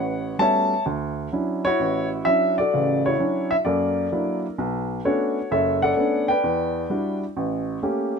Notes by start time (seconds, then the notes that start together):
Already playing: A1 B4 C#5 F#5
0.39 G3 A3 B3 C#4 F#4 C#5 E5 A5
0.86 D2
1.32 F#3 C#4 D4 E4
1.65 E4 F#4 C#5
1.80 A1
2.25 F#3 C#4 D4 E4 E5
2.58 F#4 A4 D5
2.74 A1 C#3
3.06 E4 F#4 C#5
3.19 F#3 C#4 D4 E4
3.51 E5
3.65 F#2 A#3 A4 A#4 D5
4.12 F#3 A#3 D4 E4
4.58 B1
5.05 A3 B3 C#4 D4 F#4 A4 C#5
5.51 F#1 A4 C#5 E5
5.82 A4 D5 F#5
5.97 A3 B3 C#4 D4
6.28 B4 D5 G5
6.44 E2
6.90 G3 D4 E4 F#4
7.37 A1
7.83 A3 A#3 C#4 G4